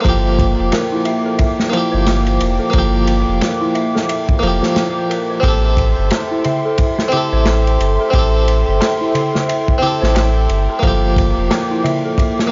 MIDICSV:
0, 0, Header, 1, 7, 480
1, 0, Start_track
1, 0, Tempo, 674157
1, 33, Time_signature, 4, 2, 24, 8
1, 8911, End_track
2, 0, Start_track
2, 0, Title_t, "Analog synth pad"
2, 0, Program_c, 0, 89
2, 26, Note_on_c, 0, 58, 80
2, 29, Note_on_c, 0, 86, 87
2, 31, Note_on_c, 0, 79, 72
2, 3841, Note_off_c, 0, 58, 0
2, 3842, Note_off_c, 0, 86, 0
2, 3843, Note_off_c, 0, 79, 0
2, 3874, Note_on_c, 0, 79, 76
2, 3875, Note_on_c, 0, 84, 92
2, 3878, Note_on_c, 0, 69, 81
2, 3878, Note_on_c, 0, 76, 79
2, 7685, Note_off_c, 0, 84, 0
2, 7687, Note_off_c, 0, 69, 0
2, 7687, Note_off_c, 0, 76, 0
2, 7709, Note_on_c, 0, 86, 94
2, 7710, Note_on_c, 0, 58, 82
2, 8911, Note_off_c, 0, 58, 0
2, 8911, Note_off_c, 0, 79, 0
2, 8911, Note_off_c, 0, 86, 0
2, 8911, End_track
3, 0, Start_track
3, 0, Title_t, "Synth bell"
3, 0, Program_c, 1, 98
3, 0, Control_c, 1, 64, 127
3, 36, Note_on_c, 1, 69, 82
3, 41, Control_c, 1, 64, 0
3, 154, Control_c, 1, 64, 127
3, 171, Note_off_c, 1, 69, 0
3, 510, Note_on_c, 1, 70, 85
3, 640, Note_off_c, 1, 70, 0
3, 655, Note_on_c, 1, 64, 79
3, 742, Note_off_c, 1, 64, 0
3, 750, Note_on_c, 1, 76, 101
3, 880, Note_off_c, 1, 76, 0
3, 894, Note_on_c, 1, 69, 73
3, 950, Note_off_c, 1, 69, 0
3, 986, Note_on_c, 1, 76, 86
3, 1125, Note_off_c, 1, 76, 0
3, 1222, Note_on_c, 1, 64, 72
3, 1356, Note_off_c, 1, 64, 0
3, 1365, Note_on_c, 1, 72, 99
3, 1836, Note_off_c, 1, 72, 0
3, 1845, Note_on_c, 1, 69, 72
3, 1906, Note_off_c, 1, 69, 0
3, 1948, Note_on_c, 1, 69, 77
3, 2086, Note_off_c, 1, 69, 0
3, 2431, Note_on_c, 1, 70, 82
3, 2561, Note_off_c, 1, 70, 0
3, 2570, Note_on_c, 1, 64, 79
3, 2660, Note_off_c, 1, 64, 0
3, 2668, Note_on_c, 1, 76, 100
3, 2800, Note_off_c, 1, 76, 0
3, 2811, Note_on_c, 1, 69, 69
3, 2869, Note_off_c, 1, 69, 0
3, 2908, Note_on_c, 1, 76, 84
3, 3047, Note_off_c, 1, 76, 0
3, 3145, Note_on_c, 1, 69, 74
3, 3278, Note_off_c, 1, 69, 0
3, 3291, Note_on_c, 1, 72, 74
3, 3381, Note_off_c, 1, 72, 0
3, 3626, Note_on_c, 1, 70, 76
3, 3758, Note_off_c, 1, 70, 0
3, 3772, Note_on_c, 1, 72, 74
3, 3861, Note_off_c, 1, 72, 0
3, 3869, Note_on_c, 1, 69, 82
3, 3883, Control_c, 1, 64, 0
3, 4007, Note_off_c, 1, 69, 0
3, 4026, Control_c, 1, 64, 127
3, 4350, Note_on_c, 1, 69, 86
3, 4480, Note_off_c, 1, 69, 0
3, 4493, Note_on_c, 1, 64, 73
3, 4582, Note_off_c, 1, 64, 0
3, 4591, Note_on_c, 1, 76, 97
3, 4721, Note_off_c, 1, 76, 0
3, 4738, Note_on_c, 1, 69, 68
3, 4792, Note_off_c, 1, 69, 0
3, 4833, Note_on_c, 1, 76, 81
3, 4969, Note_off_c, 1, 76, 0
3, 5074, Note_on_c, 1, 64, 74
3, 5202, Note_off_c, 1, 64, 0
3, 5217, Note_on_c, 1, 72, 98
3, 5682, Note_off_c, 1, 72, 0
3, 5698, Note_on_c, 1, 69, 71
3, 5752, Note_off_c, 1, 69, 0
3, 5795, Note_on_c, 1, 69, 75
3, 5930, Note_off_c, 1, 69, 0
3, 6271, Note_on_c, 1, 69, 87
3, 6401, Note_off_c, 1, 69, 0
3, 6415, Note_on_c, 1, 64, 73
3, 6503, Note_off_c, 1, 64, 0
3, 6514, Note_on_c, 1, 76, 98
3, 6642, Note_off_c, 1, 76, 0
3, 6653, Note_on_c, 1, 69, 77
3, 6710, Note_off_c, 1, 69, 0
3, 6751, Note_on_c, 1, 76, 85
3, 6888, Note_off_c, 1, 76, 0
3, 6992, Note_on_c, 1, 64, 78
3, 7121, Note_off_c, 1, 64, 0
3, 7132, Note_on_c, 1, 72, 103
3, 7599, Note_off_c, 1, 72, 0
3, 7617, Note_on_c, 1, 69, 73
3, 7672, Note_off_c, 1, 69, 0
3, 7710, Note_on_c, 1, 69, 78
3, 7723, Control_c, 1, 64, 0
3, 7840, Control_c, 1, 64, 127
3, 7848, Note_off_c, 1, 69, 0
3, 8187, Note_on_c, 1, 70, 80
3, 8319, Note_off_c, 1, 70, 0
3, 8337, Note_on_c, 1, 64, 76
3, 8424, Note_off_c, 1, 64, 0
3, 8430, Note_on_c, 1, 76, 97
3, 8560, Note_off_c, 1, 76, 0
3, 8580, Note_on_c, 1, 69, 76
3, 8633, Note_off_c, 1, 69, 0
3, 8676, Note_on_c, 1, 76, 85
3, 8811, Note_off_c, 1, 76, 0
3, 8911, End_track
4, 0, Start_track
4, 0, Title_t, "Harpsichord"
4, 0, Program_c, 2, 6
4, 4, Note_on_c, 2, 58, 84
4, 30, Note_on_c, 2, 53, 83
4, 61, Note_on_c, 2, 67, 95
4, 1195, Note_off_c, 2, 58, 0
4, 1207, Note_on_c, 2, 58, 76
4, 1208, Note_off_c, 2, 53, 0
4, 1224, Note_off_c, 2, 67, 0
4, 1233, Note_on_c, 2, 53, 73
4, 1262, Note_on_c, 2, 67, 87
4, 1914, Note_off_c, 2, 58, 0
4, 1922, Note_on_c, 2, 58, 87
4, 1930, Note_off_c, 2, 53, 0
4, 1944, Note_off_c, 2, 67, 0
4, 1951, Note_on_c, 2, 53, 78
4, 1982, Note_on_c, 2, 67, 92
4, 3114, Note_off_c, 2, 58, 0
4, 3127, Note_on_c, 2, 58, 77
4, 3129, Note_off_c, 2, 53, 0
4, 3144, Note_off_c, 2, 67, 0
4, 3153, Note_on_c, 2, 53, 69
4, 3184, Note_on_c, 2, 67, 82
4, 3836, Note_off_c, 2, 58, 0
4, 3845, Note_on_c, 2, 60, 84
4, 3850, Note_off_c, 2, 53, 0
4, 3863, Note_off_c, 2, 67, 0
4, 3871, Note_on_c, 2, 67, 75
4, 3903, Note_on_c, 2, 69, 92
4, 5036, Note_off_c, 2, 60, 0
4, 5043, Note_on_c, 2, 60, 81
4, 5049, Note_off_c, 2, 67, 0
4, 5065, Note_off_c, 2, 69, 0
4, 5075, Note_on_c, 2, 67, 73
4, 5103, Note_on_c, 2, 69, 80
4, 5755, Note_off_c, 2, 60, 0
4, 5769, Note_on_c, 2, 60, 83
4, 5770, Note_off_c, 2, 67, 0
4, 5784, Note_off_c, 2, 69, 0
4, 5802, Note_on_c, 2, 67, 77
4, 5830, Note_on_c, 2, 69, 94
4, 6956, Note_off_c, 2, 60, 0
4, 6964, Note_on_c, 2, 60, 75
4, 6974, Note_off_c, 2, 67, 0
4, 6988, Note_off_c, 2, 69, 0
4, 6994, Note_on_c, 2, 67, 70
4, 7023, Note_on_c, 2, 69, 85
4, 7675, Note_off_c, 2, 60, 0
4, 7683, Note_on_c, 2, 58, 88
4, 7690, Note_off_c, 2, 67, 0
4, 7704, Note_off_c, 2, 69, 0
4, 7712, Note_on_c, 2, 53, 79
4, 7742, Note_on_c, 2, 67, 93
4, 8872, Note_off_c, 2, 58, 0
4, 8880, Note_on_c, 2, 58, 84
4, 8889, Note_off_c, 2, 53, 0
4, 8904, Note_off_c, 2, 67, 0
4, 8911, Note_off_c, 2, 58, 0
4, 8911, End_track
5, 0, Start_track
5, 0, Title_t, "Sub bass"
5, 0, Program_c, 3, 38
5, 35, Note_on_c, 3, 31, 97
5, 390, Note_off_c, 3, 31, 0
5, 421, Note_on_c, 3, 29, 95
5, 503, Note_off_c, 3, 29, 0
5, 1378, Note_on_c, 3, 31, 84
5, 1695, Note_off_c, 3, 31, 0
5, 1714, Note_on_c, 3, 29, 99
5, 1840, Note_off_c, 3, 29, 0
5, 1952, Note_on_c, 3, 31, 98
5, 2308, Note_off_c, 3, 31, 0
5, 2336, Note_on_c, 3, 29, 97
5, 2421, Note_off_c, 3, 29, 0
5, 3149, Note_on_c, 3, 29, 87
5, 3277, Note_off_c, 3, 29, 0
5, 3870, Note_on_c, 3, 33, 98
5, 4227, Note_off_c, 3, 33, 0
5, 4257, Note_on_c, 3, 31, 96
5, 4341, Note_off_c, 3, 31, 0
5, 5214, Note_on_c, 3, 33, 83
5, 5533, Note_off_c, 3, 33, 0
5, 5552, Note_on_c, 3, 31, 99
5, 5678, Note_off_c, 3, 31, 0
5, 5794, Note_on_c, 3, 33, 96
5, 6149, Note_off_c, 3, 33, 0
5, 6178, Note_on_c, 3, 31, 96
5, 6262, Note_off_c, 3, 31, 0
5, 7136, Note_on_c, 3, 33, 89
5, 7454, Note_off_c, 3, 33, 0
5, 7472, Note_on_c, 3, 31, 98
5, 7598, Note_off_c, 3, 31, 0
5, 7708, Note_on_c, 3, 31, 100
5, 8066, Note_off_c, 3, 31, 0
5, 8096, Note_on_c, 3, 29, 91
5, 8181, Note_off_c, 3, 29, 0
5, 8911, End_track
6, 0, Start_track
6, 0, Title_t, "Darbuka"
6, 4352, Note_on_c, 9, 63, 78
6, 4424, Note_off_c, 9, 63, 0
6, 4594, Note_on_c, 9, 64, 70
6, 4666, Note_off_c, 9, 64, 0
6, 5075, Note_on_c, 9, 64, 54
6, 5146, Note_off_c, 9, 64, 0
6, 5317, Note_on_c, 9, 63, 79
6, 5388, Note_off_c, 9, 63, 0
6, 6270, Note_on_c, 9, 63, 80
6, 6341, Note_off_c, 9, 63, 0
6, 6511, Note_on_c, 9, 64, 71
6, 6583, Note_off_c, 9, 64, 0
6, 6662, Note_on_c, 9, 64, 61
6, 6733, Note_off_c, 9, 64, 0
6, 6995, Note_on_c, 9, 64, 51
6, 7067, Note_off_c, 9, 64, 0
6, 7226, Note_on_c, 9, 63, 77
6, 7297, Note_off_c, 9, 63, 0
6, 8193, Note_on_c, 9, 63, 77
6, 8264, Note_off_c, 9, 63, 0
6, 8432, Note_on_c, 9, 64, 83
6, 8504, Note_off_c, 9, 64, 0
6, 8911, End_track
7, 0, Start_track
7, 0, Title_t, "Drums"
7, 34, Note_on_c, 9, 36, 110
7, 38, Note_on_c, 9, 51, 78
7, 105, Note_off_c, 9, 36, 0
7, 109, Note_off_c, 9, 51, 0
7, 276, Note_on_c, 9, 36, 88
7, 279, Note_on_c, 9, 51, 63
7, 347, Note_off_c, 9, 36, 0
7, 351, Note_off_c, 9, 51, 0
7, 512, Note_on_c, 9, 51, 93
7, 519, Note_on_c, 9, 38, 117
7, 583, Note_off_c, 9, 51, 0
7, 590, Note_off_c, 9, 38, 0
7, 749, Note_on_c, 9, 51, 64
7, 820, Note_off_c, 9, 51, 0
7, 987, Note_on_c, 9, 51, 75
7, 992, Note_on_c, 9, 36, 95
7, 1058, Note_off_c, 9, 51, 0
7, 1063, Note_off_c, 9, 36, 0
7, 1136, Note_on_c, 9, 38, 62
7, 1207, Note_off_c, 9, 38, 0
7, 1233, Note_on_c, 9, 51, 69
7, 1304, Note_off_c, 9, 51, 0
7, 1470, Note_on_c, 9, 51, 93
7, 1472, Note_on_c, 9, 38, 108
7, 1541, Note_off_c, 9, 51, 0
7, 1543, Note_off_c, 9, 38, 0
7, 1612, Note_on_c, 9, 51, 48
7, 1683, Note_off_c, 9, 51, 0
7, 1712, Note_on_c, 9, 51, 77
7, 1783, Note_off_c, 9, 51, 0
7, 1945, Note_on_c, 9, 51, 80
7, 1949, Note_on_c, 9, 36, 115
7, 2016, Note_off_c, 9, 51, 0
7, 2020, Note_off_c, 9, 36, 0
7, 2188, Note_on_c, 9, 51, 70
7, 2259, Note_off_c, 9, 51, 0
7, 2430, Note_on_c, 9, 51, 83
7, 2437, Note_on_c, 9, 38, 112
7, 2501, Note_off_c, 9, 51, 0
7, 2508, Note_off_c, 9, 38, 0
7, 2670, Note_on_c, 9, 51, 55
7, 2742, Note_off_c, 9, 51, 0
7, 2821, Note_on_c, 9, 38, 51
7, 2892, Note_off_c, 9, 38, 0
7, 2913, Note_on_c, 9, 51, 88
7, 2984, Note_off_c, 9, 51, 0
7, 3052, Note_on_c, 9, 36, 102
7, 3123, Note_off_c, 9, 36, 0
7, 3154, Note_on_c, 9, 51, 64
7, 3226, Note_off_c, 9, 51, 0
7, 3295, Note_on_c, 9, 38, 53
7, 3367, Note_off_c, 9, 38, 0
7, 3389, Note_on_c, 9, 51, 79
7, 3391, Note_on_c, 9, 38, 107
7, 3460, Note_off_c, 9, 51, 0
7, 3462, Note_off_c, 9, 38, 0
7, 3637, Note_on_c, 9, 51, 69
7, 3708, Note_off_c, 9, 51, 0
7, 3868, Note_on_c, 9, 36, 97
7, 3871, Note_on_c, 9, 51, 85
7, 3939, Note_off_c, 9, 36, 0
7, 3942, Note_off_c, 9, 51, 0
7, 4108, Note_on_c, 9, 36, 87
7, 4115, Note_on_c, 9, 51, 74
7, 4179, Note_off_c, 9, 36, 0
7, 4186, Note_off_c, 9, 51, 0
7, 4346, Note_on_c, 9, 51, 94
7, 4354, Note_on_c, 9, 38, 122
7, 4418, Note_off_c, 9, 51, 0
7, 4426, Note_off_c, 9, 38, 0
7, 4588, Note_on_c, 9, 51, 62
7, 4659, Note_off_c, 9, 51, 0
7, 4826, Note_on_c, 9, 51, 83
7, 4832, Note_on_c, 9, 36, 101
7, 4897, Note_off_c, 9, 51, 0
7, 4903, Note_off_c, 9, 36, 0
7, 4974, Note_on_c, 9, 38, 59
7, 5045, Note_off_c, 9, 38, 0
7, 5067, Note_on_c, 9, 51, 68
7, 5138, Note_off_c, 9, 51, 0
7, 5307, Note_on_c, 9, 51, 84
7, 5308, Note_on_c, 9, 38, 102
7, 5378, Note_off_c, 9, 51, 0
7, 5379, Note_off_c, 9, 38, 0
7, 5462, Note_on_c, 9, 51, 47
7, 5533, Note_off_c, 9, 51, 0
7, 5557, Note_on_c, 9, 51, 71
7, 5628, Note_off_c, 9, 51, 0
7, 5791, Note_on_c, 9, 51, 82
7, 5792, Note_on_c, 9, 36, 107
7, 5862, Note_off_c, 9, 51, 0
7, 5863, Note_off_c, 9, 36, 0
7, 6036, Note_on_c, 9, 51, 65
7, 6107, Note_off_c, 9, 51, 0
7, 6276, Note_on_c, 9, 51, 96
7, 6279, Note_on_c, 9, 38, 104
7, 6347, Note_off_c, 9, 51, 0
7, 6350, Note_off_c, 9, 38, 0
7, 6515, Note_on_c, 9, 51, 72
7, 6586, Note_off_c, 9, 51, 0
7, 6659, Note_on_c, 9, 38, 52
7, 6730, Note_off_c, 9, 38, 0
7, 6758, Note_on_c, 9, 51, 82
7, 6829, Note_off_c, 9, 51, 0
7, 6894, Note_on_c, 9, 36, 86
7, 6965, Note_off_c, 9, 36, 0
7, 6997, Note_on_c, 9, 51, 75
7, 7069, Note_off_c, 9, 51, 0
7, 7143, Note_on_c, 9, 38, 54
7, 7215, Note_off_c, 9, 38, 0
7, 7232, Note_on_c, 9, 51, 89
7, 7239, Note_on_c, 9, 38, 125
7, 7303, Note_off_c, 9, 51, 0
7, 7310, Note_off_c, 9, 38, 0
7, 7471, Note_on_c, 9, 51, 65
7, 7543, Note_off_c, 9, 51, 0
7, 7709, Note_on_c, 9, 36, 116
7, 7711, Note_on_c, 9, 51, 86
7, 7781, Note_off_c, 9, 36, 0
7, 7782, Note_off_c, 9, 51, 0
7, 7949, Note_on_c, 9, 36, 100
7, 7960, Note_on_c, 9, 51, 75
7, 8020, Note_off_c, 9, 36, 0
7, 8031, Note_off_c, 9, 51, 0
7, 8193, Note_on_c, 9, 51, 90
7, 8194, Note_on_c, 9, 38, 115
7, 8265, Note_off_c, 9, 38, 0
7, 8265, Note_off_c, 9, 51, 0
7, 8440, Note_on_c, 9, 51, 67
7, 8511, Note_off_c, 9, 51, 0
7, 8671, Note_on_c, 9, 36, 105
7, 8680, Note_on_c, 9, 51, 82
7, 8742, Note_off_c, 9, 36, 0
7, 8752, Note_off_c, 9, 51, 0
7, 8824, Note_on_c, 9, 38, 60
7, 8895, Note_off_c, 9, 38, 0
7, 8911, End_track
0, 0, End_of_file